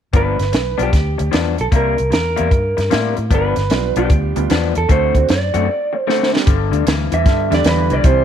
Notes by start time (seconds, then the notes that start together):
0.13 G1 G2 F3 B3 D4 B4, kick, closed hi-hat
0.38 G1, muted clean electric guitar stroke, snare, closed hi-hat
0.52 B1, muted clean electric guitar stroke, snare, closed hi-hat
0.78 B1 G2 F3 B3 D4, closed hi-hat
0.83 G4
0.92 D2, muted clean electric guitar stroke, kick, snare, closed hi-hat
1.18 D2, muted clean electric guitar stroke, closed hi-hat
1.31 E2 G2 F3 B3 D4, snare, closed hi-hat
1.58 B1 A4, muted clean electric guitar stroke, closed hi-hat
1.72 C2 C3 G3 A#3 E4, kick, closed hi-hat
1.76 A#4
1.97 C2, muted clean electric guitar stroke, closed hi-hat
2.10 E2 A#4, muted clean electric guitar stroke, snare, closed hi-hat
2.36 E2 C3 G3 A#3 E4, closed hi-hat
2.51 G2, muted clean electric guitar stroke, kick, closed hi-hat
2.77 G2, muted clean electric guitar stroke, snare, closed hi-hat
2.90 A2 C3 G3 A#3 E4, snare, closed hi-hat
3.17 A2, muted clean electric guitar stroke, closed hi-hat
3.30 G1 G2 F3 B3 D4 B4, kick, closed hi-hat
3.56 G1, muted clean electric guitar stroke, snare, closed hi-hat
3.70 B1 G3 B3 D4 F4, muted clean electric guitar stroke, snare, closed hi-hat
3.96 B1 G2 F3 B3 D4 G4, closed hi-hat
4.10 D2, muted clean electric guitar stroke, kick, closed hi-hat
4.36 D2 G3 B3 D4 F4, muted clean electric guitar stroke, closed hi-hat
4.50 E2 G2 F3 B3 D4, snare, closed hi-hat
4.75 E2 A4, muted clean electric guitar stroke, closed hi-hat
4.89 D2 D3 A3 C4 F#4 C5, kick, closed hi-hat
5.15 D2 A3 C4 D4 F#4, muted clean electric guitar stroke, kick, closed hi-hat
5.29 F#2 D5, muted clean electric guitar stroke, snare, closed hi-hat
5.54 F#2 D3 A3 C4 F#4, closed hi-hat
5.68 muted clean electric guitar stroke
5.93 muted clean electric guitar stroke
6.00 C5
6.07 D3 A3 C4 F#4, snare
6.23 snare
6.32 G3 B3 D4 G4, muted clean electric guitar stroke
6.37 snare
6.46 G1 G2 D3, kick, closed hi-hat
6.71 D2 G2 D3, closed hi-hat
6.86 D2 G2 E3, snare, closed hi-hat
7.12 E2 G2 E3 E5, closed hi-hat
7.26 G2 D3, kick, snare, closed hi-hat
7.50 E2 G2 D3 G3 B3 D4 G4, snare, closed hi-hat
7.54 D5
7.64 E2 G2 E3, snare, closed hi-hat
7.69 B4
7.90 C2 G2 E3 D5, closed hi-hat
8.03 C2 C3 E3 G3 C4 E4 G4 C5, kick, closed hi-hat